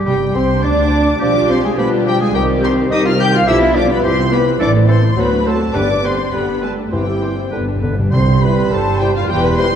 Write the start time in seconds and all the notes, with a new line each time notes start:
0.05 G1 C3 G3 G4 G5
0.35 C2 C4 C5 C6
0.63 D2 D4 D5 D6
1.19 B1 F3 G3 D4 F4 G4 D5 D6
1.49 F3 C4 G4 C5 C6
1.63 G#3 G#4 G#5
1.77 B2 D3 F3 G3 B3 D4 F4 G4 B4 B5
2.05 F3 G3 G4 G5
2.20 G#3 G#4 G#5
2.34 C2 D#3 G3 C4 D#4 G4 G5
2.62 D#3 C4 G4 C5 C6
2.90 C3 D#3 G3 C4 D#4 G4 D#5 D#6
3.05 F4 F5 F6
3.19 D#3 G4 G5 G6
3.33 F4 F5 F6
3.46 B1 D3 F3 G3 B3 E4 F4 G4 E5 E6
3.62 F3 B3 D4 F4
3.75 D3 F3 G3 B3 D4 G4 D5 D6
3.89 F3 B3 D4 F4 B4 B5
4.03 C2 E3 G3 C4 E4 G4 C5 C6
4.18 E3 C4 E4 C5
4.31 E3 G3 B3 C4 G4 B4 B5
4.46 E3 C4 E4 C5
4.59 A1 E3 A3 C4 D4 E4 A4 D5 D6
4.74 E3 A3 E4 C5
4.88 E3 A3 C4 A4 C5 C6
5.03 E3 A3 E4 C5
5.17 D2 F#3 A3 B3 C4 F#4 A4 B4 C5 B5
5.31 F#3 A3 D4 F#4
5.46 F#3 A3 C4 F#4 A4 C5 A5
5.60 F#3 A3 D4 F#4
5.74 G1 G2 D3 G3 B3 D4 G4 B4 D5 D6
5.90 G3 D4 B4
6.03 D3 G3 B3 C4 G4 B4 C5 C6
6.18 G3 D4 B4
6.33 G1 D3 G3 B3 G4 B4 B5
6.48 G3 D4 B4
6.61 D3 G3 A3 B3 G4 A4 B4 A5
6.78 G3 D4 B4
6.91 G1 G2 E3 G3 C4 E4 G4 C5 G5
7.08 G3 E4 C5
7.22 E3 C4 G4 C5
7.38 G3 E4 C5
7.51 G1 G2 D3 B3 D4 G4 B4
7.61 G2
7.68 G2 G3 D4 B4
7.76 G2
7.81 G2 D3 B3 G4 B4
7.91 G2
7.98 G2 G3 D4 B4
8.11 C2 C3 G3 E4 C5 C6
8.42 G3 E4 B4 B5
8.71 G1 G2 A4 C5 A5
8.99 G3 E4 G4 G5
9.15 F4 F5
9.28 E1 E2 G3 E4 G4 B4 C5 G5
9.43 B4 B5
9.57 G3 E4 C5 C6